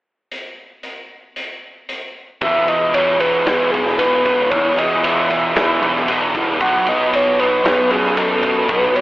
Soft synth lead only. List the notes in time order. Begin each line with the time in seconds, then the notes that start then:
2.42 E5
2.69 D#5
2.94 C#5
3.20 B4
3.46 B4
3.71 G#4
3.98 B4
4.50 C#5
4.78 D#5
5.04 E5
6.61 F#5
6.89 D#5
7.15 C#5
7.39 B4
7.65 B4
7.91 G#4
8.17 A4
8.70 B4
8.96 C#5